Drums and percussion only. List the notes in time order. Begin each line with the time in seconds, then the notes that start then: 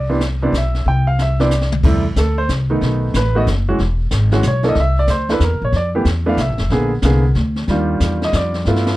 0.21 snare, hi-hat pedal
0.54 snare, hi-hat pedal
0.74 snare
0.86 brush sweep, kick
1.19 snare, hi-hat pedal
1.40 snare
1.51 snare, hi-hat pedal
1.61 snare
1.72 mid tom
1.83 brush sweep, kick, snare, crash
2.16 kick, snare, hi-hat pedal
2.49 kick, snare, hi-hat pedal
2.82 brush sweep, kick, snare
3.14 kick, snare, hi-hat pedal
3.47 kick, snare, hi-hat pedal
3.79 brush sweep, kick, snare
4.11 kick, snare, hi-hat pedal
4.32 snare
4.43 kick, snare, hi-hat pedal
4.63 snare
4.75 brush sweep, kick, snare
5.07 kick, snare, hi-hat pedal
5.29 snare
5.40 kick, snare, hi-hat pedal
5.72 brush sweep, kick, snare
6.05 kick, snare, hi-hat pedal
6.37 kick, snare, hi-hat pedal
6.58 snare
6.70 brush sweep, kick, snare
7.02 kick, snare, hi-hat pedal
7.35 kick, snare
7.56 snare
7.67 brush sweep, kick, snare
8.00 kick, snare, hi-hat pedal
8.22 snare
8.33 kick, snare, hi-hat pedal
8.54 snare
8.65 snare
8.76 snare
8.87 snare